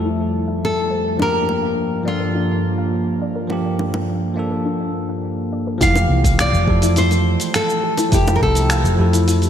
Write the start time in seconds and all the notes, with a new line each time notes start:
Already playing: F2 F3 G3 A3 E4 G4 A4 E5
0.05 E4
0.48 E5
0.65 A4
0.90 C5
1.05 A4
1.17 G2 F3 A#3 D4, high bongo
1.22 G4 A#4
1.49 high bongo
1.63 F5
2.03 F3 A#3 D4 D5
2.08 F4 A4
2.20 A#4
2.35 D4
2.78 F5
3.22 D5
3.36 A#4
3.48 F3 A#3 D4, high bongo
3.52 G4
3.79 high bongo
3.94 F5, high bongo
4.34 F3 A#3 D4 D5
4.39 A4
4.51 A#4
4.65 D4
5.09 F5
5.52 D5
5.67 A#4
5.78 F1 E3 F3 A3 E4, kick, open hi-hat, cabasa
5.82 G4 F5
5.95 high bongo, cabasa
6.09 C2
6.24 kick, open hi-hat, cabasa
6.39 D5 F5, finger snap, open hi-hat, cabasa
6.53 F1, cabasa
6.65 F2 F3 A3 E4 G4, kick
6.70 A4
6.82 E4, open hi-hat, cabasa
6.96 E4 C5, open hi-hat, cabasa
7.11 open hi-hat, high bongo, cabasa
7.40 open hi-hat, cabasa
7.54 A4 F5, finger snap, open hi-hat, cabasa
7.69 cabasa
7.83 G4
7.97 E4, open hi-hat, high bongo, cabasa
8.09 F1 F3 A3 E4, kick, open hi-hat, cabasa
8.14 G4
8.27 high bongo, cabasa
8.36 A#4
8.41 C2 A4, kick
8.55 open hi-hat, cabasa
8.70 F5, finger snap, open hi-hat, cabasa
8.84 F1, cabasa
8.96 F2 F3 A3 E4 G4
9.01 A4
9.13 E4, open hi-hat, cabasa
9.28 E4, open hi-hat, cabasa
9.42 open hi-hat, cabasa